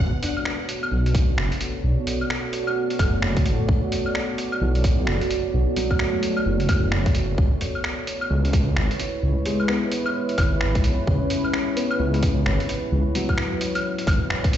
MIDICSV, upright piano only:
0, 0, Header, 1, 2, 480
1, 0, Start_track
1, 0, Time_signature, 4, 2, 24, 8
1, 0, Tempo, 461538
1, 15156, End_track
2, 0, Start_track
2, 0, Title_t, "Upright piano"
2, 0, Program_c, 0, 0
2, 0, Control_c, 0, 64, 127
2, 9, Control_c, 0, 64, 0
2, 207, Control_c, 0, 64, 127
2, 232, Note_on_c, 0, 62, 67
2, 1123, Note_off_c, 0, 62, 0
2, 3117, Note_on_c, 0, 57, 60
2, 4005, Note_off_c, 0, 57, 0
2, 4795, Note_on_c, 0, 52, 51
2, 5685, Note_off_c, 0, 52, 0
2, 5999, Note_on_c, 0, 54, 61
2, 6240, Note_on_c, 0, 57, 61
2, 6722, Note_on_c, 0, 52, 63
2, 6886, Note_off_c, 0, 54, 0
2, 7127, Note_off_c, 0, 57, 0
2, 7608, Note_off_c, 0, 52, 0
2, 7688, Control_c, 0, 64, 0
2, 7853, Control_c, 0, 64, 127
2, 9836, Note_on_c, 0, 56, 69
2, 10080, Note_on_c, 0, 59, 78
2, 10725, Note_off_c, 0, 56, 0
2, 10967, Note_off_c, 0, 59, 0
2, 11514, Note_on_c, 0, 61, 77
2, 12236, Note_on_c, 0, 59, 72
2, 12404, Note_off_c, 0, 61, 0
2, 13125, Note_off_c, 0, 59, 0
2, 13678, Note_on_c, 0, 54, 71
2, 14566, Note_off_c, 0, 54, 0
2, 15156, End_track
0, 0, End_of_file